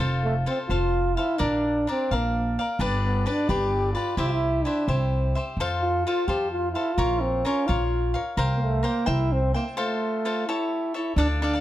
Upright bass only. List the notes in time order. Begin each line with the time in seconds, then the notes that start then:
0.00 F1
0.69 F1
1.40 A#1
2.11 A#1
2.79 G1
3.49 G1
4.17 C2
4.88 C2
5.57 F2
6.28 F2
6.98 A#1
7.69 A#1
8.37 C2
9.07 C2
11.16 D2